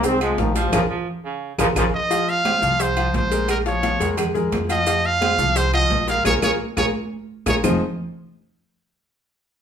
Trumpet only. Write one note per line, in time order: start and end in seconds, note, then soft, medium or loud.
1.94 2.31 D#5 loud
2.29 2.83 F5 loud
2.81 3.15 C5 loud
3.16 3.48 C5 medium
3.51 3.58 A#4 medium
3.68 4.15 C#5 medium
4.71 5.07 D#5 loud
5.06 5.58 F5 loud
5.57 5.73 C5 loud
5.74 6.06 D#5 loud
6.09 6.25 F5 loud
6.26 6.34 C#5 loud
6.44 6.52 C#5 loud
6.78 6.86 C#5 loud
7.48 7.56 C#5 medium